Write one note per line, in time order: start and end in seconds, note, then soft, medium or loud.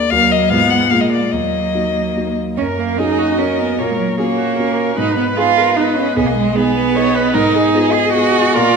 0.00 0.12 D#2 soft
0.00 0.12 A#3 soft
0.00 0.14 G#4 soft
0.00 0.12 D5 medium
0.00 0.14 D5 soft
0.10 0.49 D#2 medium
0.10 0.52 F#3 soft
0.10 0.52 A#3 soft
0.10 0.47 A#3 soft
0.10 0.47 F#4 soft
0.10 0.47 A#4 soft
0.10 0.33 F5 medium
0.31 0.51 D#5 medium
0.49 0.90 G#2 soft
0.49 0.91 G#3 medium
0.49 0.92 B3 soft
0.49 0.87 B3 soft
0.49 0.87 F4 soft
0.49 0.87 G#4 soft
0.49 0.72 F5 medium
0.70 0.92 F#5 medium
0.91 1.31 A#2 soft
0.91 1.34 G#3 soft
0.91 1.28 A#3 soft
0.91 1.32 A#3 soft
0.91 1.29 F4 soft
0.91 1.29 G#4 soft
0.91 1.02 F5 medium
1.01 1.11 D#5 soft
1.12 1.34 D5 soft
1.32 1.73 D#2 soft
1.32 2.38 F#3 soft
1.32 2.35 A#3 soft
1.32 2.37 D#5 soft
1.74 2.12 A#3 soft
1.74 2.12 D#4 soft
1.74 2.13 F#4 soft
2.16 2.54 A#3 soft
2.16 2.54 D#4 soft
2.16 2.54 F#4 soft
2.57 2.97 F#2 soft
2.57 2.65 C#4 medium
2.57 3.00 A#4 soft
2.78 3.00 A#3 medium
2.98 3.35 A#3 soft
2.98 3.35 C#4 soft
2.98 3.40 D#4 medium
2.98 3.35 F#4 soft
2.98 3.20 G#4 soft
2.98 3.80 D#5 soft
3.18 3.40 F#4 soft
3.38 3.75 A#3 soft
3.38 3.60 C#4 medium
3.38 3.75 C#4 soft
3.38 3.75 F#4 soft
3.38 3.77 A#4 soft
3.59 3.81 B3 medium
3.78 4.17 A#2 soft
3.78 3.91 A#3 medium
3.78 4.17 A#4 soft
3.78 4.18 C#5 soft
3.90 3.98 G#3 soft
3.99 4.07 F#3 medium
4.18 4.54 A#3 soft
4.18 4.97 A#3 medium
4.18 4.55 C#4 soft
4.18 4.55 F#4 soft
4.18 4.26 G#4 soft
4.18 4.98 C#5 soft
4.37 4.56 F#4 soft
4.57 4.94 A#3 soft
4.57 4.94 C#4 soft
4.57 4.95 F#4 soft
4.57 4.98 A#4 soft
4.97 5.36 G#2 soft
4.97 5.17 D#4 medium
4.97 5.38 B4 soft
4.97 5.79 B4 soft
5.17 5.25 B3 medium
5.36 5.73 B3 soft
5.36 5.73 D#4 soft
5.36 5.78 F4 medium
5.36 5.58 G#4 soft
5.36 5.74 G#4 soft
5.56 5.76 A#4 soft
5.77 6.13 B3 soft
5.77 5.98 D#4 medium
5.77 6.13 D#4 soft
5.77 6.13 G#4 soft
5.77 6.18 B4 soft
5.77 6.16 D#5 soft
5.96 6.15 C#4 medium
6.15 6.55 B1 soft
6.15 6.28 B3 medium
6.15 6.55 G#4 soft
6.15 6.57 D#5 soft
6.26 6.36 A#3 medium
6.36 6.57 G#3 medium
6.55 7.35 B3 medium
6.55 6.91 B3 soft
6.55 6.92 D#4 soft
6.55 6.96 G#4 soft
6.55 6.92 G#4 soft
6.55 6.75 B4 medium
6.76 6.98 B4 medium
6.95 7.31 B3 soft
6.95 7.31 D#4 soft
6.95 7.31 G#4 soft
6.95 7.16 C#5 medium
6.95 7.34 D#5 medium
7.15 7.36 B4 medium
7.34 7.73 G#2 medium
7.34 7.95 D#4 medium
7.34 7.56 A#4 medium
7.34 7.74 D#5 medium
7.54 8.14 G#4 medium
7.74 8.11 B3 soft
7.74 8.11 F4 soft
7.74 8.11 G#4 soft
7.74 8.57 D#5 medium
7.93 8.13 G#4 medium
8.14 8.51 B3 soft
8.14 8.51 F4 soft
8.14 8.56 F#4 medium
8.14 8.56 G#4 medium
8.14 8.51 G#4 soft
8.54 8.77 A#2 medium
8.54 8.77 F4 loud
8.54 8.74 A#4 medium
8.54 8.77 D5 medium